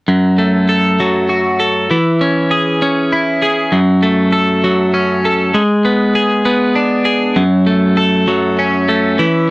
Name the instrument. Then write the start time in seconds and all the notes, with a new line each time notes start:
clean electric guitar
0.08 F#2
0.38 A3
0.69 A4
1.00 F#3
1.29 F#4
1.60 A4
1.91 E3
2.21 C#4
2.51 G#4
2.82 C#4
3.13 E4
3.42 G#4
3.72 F#2
4.03 A3
4.33 A4
4.64 F#3
4.94 C#4
5.25 A4
5.54 G#3
5.85 B3
6.15 G#4
6.45 B3
6.76 D4
7.05 G#4
7.36 F#2
7.67 A3
7.97 A4
8.28 F#3
8.59 C#4
8.89 A3
9.19 E3